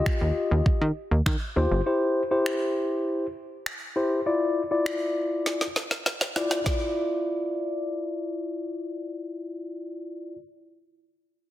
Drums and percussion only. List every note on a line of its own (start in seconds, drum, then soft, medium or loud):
0.06 finger snap loud
0.06 kick loud
0.66 kick loud
1.26 finger snap loud
1.26 kick loud
2.46 finger snap loud
3.66 finger snap loud
4.86 finger snap loud
5.46 snare medium
5.61 snare soft
5.76 snare medium
5.91 snare medium
6.06 snare medium
6.21 snare medium
6.36 snare medium
6.51 snare medium
6.66 kick medium
6.66 snare medium